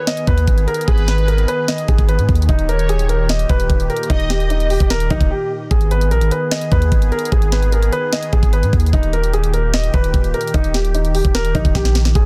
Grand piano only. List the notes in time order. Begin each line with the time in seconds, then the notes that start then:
0.07 D#5
0.28 B4
0.68 A#4
0.88 G#4
1.08 B4
1.28 A#4
1.48 B4
1.68 D#5
1.88 G#4
2.09 B4
2.49 D#4
2.69 A#4
2.89 G#4
3.09 A#4
3.29 D#5
3.50 B4
3.90 A#4
4.10 D#4
4.30 G4
4.50 D#4
4.70 G4
4.90 A#4
5.11 D#4
5.31 G4
5.71 G#4
5.91 B4
6.11 A#4
6.32 B4
6.51 D#5
6.72 B4
7.12 A#4
7.32 G#4
7.52 B4
7.72 A#4
7.92 B4
8.13 D#5
8.33 G#4
8.53 B4
8.93 D#4
9.13 A#4
9.34 G#4
9.54 A#4
9.74 D#5
9.94 B4
10.34 A#4
10.54 D#4
10.74 G4
10.94 D#4
11.15 G4
11.35 A#4
11.55 D#4
11.75 G4
12.15 G#4